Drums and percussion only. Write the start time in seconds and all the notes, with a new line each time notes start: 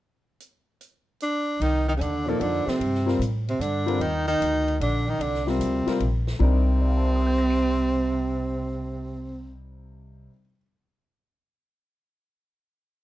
0.40 closed hi-hat
0.81 closed hi-hat
1.20 closed hi-hat
1.61 ride
2.01 hi-hat pedal, ride
2.41 ride
2.68 snare
2.81 ride
2.95 snare
3.08 snare
3.22 hi-hat pedal, ride
3.49 ride
3.61 hi-hat pedal, ride
3.88 ride
4.01 ride
4.42 hi-hat pedal, ride
4.68 ride
4.81 ride
5.21 ride
5.34 snare
5.47 snare
5.61 hi-hat pedal, ride
5.87 snare, ride
6.00 ride
6.27 snare
6.40 kick